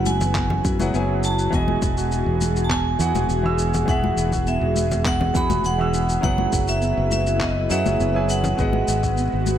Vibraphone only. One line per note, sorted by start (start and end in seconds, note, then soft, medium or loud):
0.06 0.61 G#5 loud
1.25 1.52 A5 loud
1.54 2.68 G#5 medium
2.65 2.71 A5 medium
2.71 3.92 G#5 loud
3.89 4.49 F#5 medium
4.48 5.02 E5 medium
5.07 5.37 F#5 loud
5.37 5.66 B5 loud
5.66 6.23 F#5 loud
6.24 6.65 F#5 loud
6.69 7.12 E5 medium
7.13 7.42 E5 medium
7.42 7.72 D#5 medium
7.71 8.32 E5 loud
8.31 9.58 F#5 medium